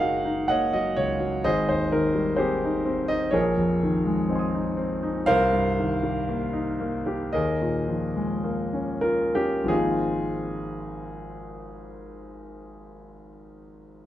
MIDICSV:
0, 0, Header, 1, 2, 480
1, 0, Start_track
1, 0, Key_signature, -4, "major"
1, 0, Tempo, 961538
1, 732, Time_signature, 4, 2, 24, 8
1, 2643, Tempo, 1029160
1, 3603, Tempo, 1107011
1, 4083, Tempo, 1242236
1, 4563, Tempo, 1348315
1, 5043, Tempo, 1271186
1, 6180, End_track
2, 0, Start_track
2, 0, Title_t, "Grand piano"
2, 0, Program_c, 0, 0
2, 0, Control_c, 0, 64, 127
2, 0, Note_on_c, 0, 30, 54
2, 0, Note_on_c, 0, 54, 43
2, 0, Note_on_c, 0, 56, 43
2, 0, Note_on_c, 0, 58, 46
2, 0, Note_on_c, 0, 63, 50
2, 0, Note_on_c, 0, 66, 48
2, 0, Note_on_c, 0, 68, 64
2, 0, Note_on_c, 0, 70, 66
2, 0, Note_on_c, 0, 73, 81
2, 0, Note_on_c, 0, 75, 89
2, 0, Note_on_c, 0, 77, 89
2, 0, Note_on_c, 0, 78, 90
2, 3, Note_off_c, 0, 66, 0
2, 3, Note_on_c, 0, 66, 47
2, 73, Note_off_c, 0, 63, 0
2, 126, Note_on_c, 0, 63, 51
2, 196, Note_off_c, 0, 66, 0
2, 239, Note_off_c, 0, 78, 0
2, 239, Note_on_c, 0, 78, 94
2, 241, Note_off_c, 0, 77, 0
2, 245, Note_off_c, 0, 58, 0
2, 245, Note_on_c, 0, 58, 46
2, 247, Note_off_c, 0, 75, 0
2, 247, Note_on_c, 0, 75, 72
2, 251, Note_off_c, 0, 73, 0
2, 251, Note_on_c, 0, 73, 65
2, 321, Note_off_c, 0, 63, 0
2, 359, Note_off_c, 0, 75, 0
2, 363, Note_off_c, 0, 73, 0
2, 366, Note_off_c, 0, 78, 0
2, 366, Note_on_c, 0, 75, 80
2, 368, Note_off_c, 0, 54, 0
2, 368, Note_on_c, 0, 54, 45
2, 443, Note_off_c, 0, 58, 0
2, 482, Note_on_c, 0, 73, 92
2, 484, Note_on_c, 0, 37, 43
2, 491, Note_off_c, 0, 75, 0
2, 565, Note_off_c, 0, 54, 0
2, 599, Note_on_c, 0, 54, 44
2, 681, Note_off_c, 0, 37, 0
2, 716, Note_off_c, 0, 30, 0
2, 721, Note_on_c, 0, 72, 75
2, 721, Note_on_c, 0, 75, 99
2, 723, Note_on_c, 0, 32, 64
2, 724, Note_off_c, 0, 68, 0
2, 724, Note_on_c, 0, 68, 76
2, 725, Note_off_c, 0, 54, 0
2, 727, Note_off_c, 0, 73, 0
2, 739, Control_c, 0, 64, 0
2, 742, Note_off_c, 0, 56, 0
2, 744, Note_off_c, 0, 70, 0
2, 819, Control_c, 0, 64, 127
2, 835, Note_off_c, 0, 72, 0
2, 837, Note_off_c, 0, 68, 0
2, 842, Note_on_c, 0, 72, 81
2, 843, Note_off_c, 0, 75, 0
2, 847, Note_on_c, 0, 39, 46
2, 960, Note_on_c, 0, 70, 83
2, 962, Note_on_c, 0, 51, 47
2, 963, Note_off_c, 0, 72, 0
2, 1036, Note_off_c, 0, 39, 0
2, 1074, Note_on_c, 0, 55, 50
2, 1153, Note_off_c, 0, 51, 0
2, 1181, Note_on_c, 0, 72, 76
2, 1187, Note_on_c, 0, 68, 58
2, 1188, Note_on_c, 0, 67, 58
2, 1190, Note_on_c, 0, 60, 53
2, 1200, Note_off_c, 0, 70, 0
2, 1271, Note_off_c, 0, 55, 0
2, 1320, Note_on_c, 0, 63, 55
2, 1389, Note_off_c, 0, 60, 0
2, 1426, Note_on_c, 0, 60, 57
2, 1512, Note_off_c, 0, 63, 0
2, 1533, Note_off_c, 0, 67, 0
2, 1533, Note_off_c, 0, 68, 0
2, 1539, Note_on_c, 0, 75, 96
2, 1547, Note_on_c, 0, 63, 54
2, 1549, Note_off_c, 0, 72, 0
2, 1623, Note_off_c, 0, 60, 0
2, 1651, Note_on_c, 0, 73, 87
2, 1653, Note_off_c, 0, 32, 0
2, 1659, Note_on_c, 0, 68, 69
2, 1661, Note_on_c, 0, 34, 60
2, 1665, Note_on_c, 0, 70, 68
2, 1667, Note_off_c, 0, 75, 0
2, 1671, Note_off_c, 0, 63, 0
2, 1685, Control_c, 0, 64, 0
2, 1756, Control_c, 0, 64, 127
2, 1785, Note_on_c, 0, 41, 48
2, 1913, Note_on_c, 0, 51, 52
2, 1981, Note_off_c, 0, 41, 0
2, 2026, Note_on_c, 0, 56, 55
2, 2106, Note_off_c, 0, 51, 0
2, 2142, Note_on_c, 0, 60, 50
2, 2148, Note_on_c, 0, 75, 40
2, 2160, Note_on_c, 0, 80, 40
2, 2174, Note_on_c, 0, 84, 42
2, 2192, Note_on_c, 0, 87, 42
2, 2224, Note_off_c, 0, 56, 0
2, 2269, Note_on_c, 0, 63, 50
2, 2343, Note_off_c, 0, 60, 0
2, 2369, Note_off_c, 0, 68, 0
2, 2372, Note_off_c, 0, 70, 0
2, 2382, Note_on_c, 0, 60, 58
2, 2385, Note_off_c, 0, 73, 0
2, 2468, Note_off_c, 0, 63, 0
2, 2510, Note_on_c, 0, 63, 52
2, 2585, Note_off_c, 0, 60, 0
2, 2615, Note_off_c, 0, 34, 0
2, 2620, Note_off_c, 0, 75, 0
2, 2625, Note_off_c, 0, 80, 0
2, 2627, Note_on_c, 0, 77, 119
2, 2631, Note_on_c, 0, 72, 94
2, 2632, Note_off_c, 0, 84, 0
2, 2632, Note_on_c, 0, 70, 94
2, 2634, Note_on_c, 0, 36, 69
2, 2638, Note_off_c, 0, 63, 0
2, 2641, Note_off_c, 0, 87, 0
2, 2652, Control_c, 0, 64, 0
2, 2720, Control_c, 0, 64, 127
2, 2752, Note_on_c, 0, 43, 46
2, 2876, Note_on_c, 0, 51, 49
2, 2945, Note_off_c, 0, 43, 0
2, 2988, Note_on_c, 0, 55, 52
2, 3068, Note_off_c, 0, 51, 0
2, 3107, Note_on_c, 0, 58, 53
2, 3185, Note_off_c, 0, 55, 0
2, 3219, Note_on_c, 0, 63, 55
2, 3305, Note_off_c, 0, 58, 0
2, 3348, Note_on_c, 0, 58, 55
2, 3422, Note_off_c, 0, 63, 0
2, 3468, Note_on_c, 0, 67, 53
2, 3549, Note_off_c, 0, 58, 0
2, 3579, Note_off_c, 0, 70, 0
2, 3579, Note_off_c, 0, 72, 0
2, 3581, Note_off_c, 0, 36, 0
2, 3591, Note_on_c, 0, 75, 84
2, 3595, Note_on_c, 0, 39, 62
2, 3596, Note_off_c, 0, 77, 0
2, 3597, Note_off_c, 0, 67, 0
2, 3597, Note_on_c, 0, 68, 63
2, 3598, Note_on_c, 0, 70, 68
2, 3611, Control_c, 0, 64, 0
2, 3678, Control_c, 0, 64, 127
2, 3717, Note_on_c, 0, 46, 48
2, 3832, Note_on_c, 0, 53, 50
2, 3910, Note_off_c, 0, 46, 0
2, 3954, Note_on_c, 0, 56, 52
2, 4031, Note_off_c, 0, 53, 0
2, 4075, Note_on_c, 0, 58, 49
2, 4148, Note_off_c, 0, 56, 0
2, 4189, Note_on_c, 0, 61, 45
2, 4262, Note_off_c, 0, 58, 0
2, 4291, Note_off_c, 0, 70, 0
2, 4294, Note_off_c, 0, 68, 0
2, 4296, Note_on_c, 0, 70, 82
2, 4301, Note_on_c, 0, 65, 52
2, 4307, Note_off_c, 0, 75, 0
2, 4381, Note_off_c, 0, 61, 0
2, 4426, Note_off_c, 0, 70, 0
2, 4427, Note_on_c, 0, 67, 79
2, 4433, Note_on_c, 0, 61, 47
2, 4505, Note_off_c, 0, 65, 0
2, 4540, Note_on_c, 0, 32, 58
2, 4544, Note_off_c, 0, 39, 0
2, 4545, Note_on_c, 0, 53, 44
2, 4548, Note_on_c, 0, 56, 45
2, 4549, Note_on_c, 0, 58, 43
2, 4555, Note_on_c, 0, 68, 91
2, 4557, Note_on_c, 0, 60, 42
2, 4558, Note_on_c, 0, 65, 65
2, 4559, Note_off_c, 0, 67, 0
2, 4562, Note_off_c, 0, 61, 0
2, 4562, Note_on_c, 0, 63, 62
2, 4572, Control_c, 0, 64, 0
2, 4653, Control_c, 0, 64, 127
2, 6180, Note_off_c, 0, 32, 0
2, 6180, Note_off_c, 0, 53, 0
2, 6180, Note_off_c, 0, 56, 0
2, 6180, Note_off_c, 0, 58, 0
2, 6180, Note_off_c, 0, 60, 0
2, 6180, Note_off_c, 0, 63, 0
2, 6180, Note_off_c, 0, 65, 0
2, 6180, Note_off_c, 0, 68, 0
2, 6180, End_track
0, 0, End_of_file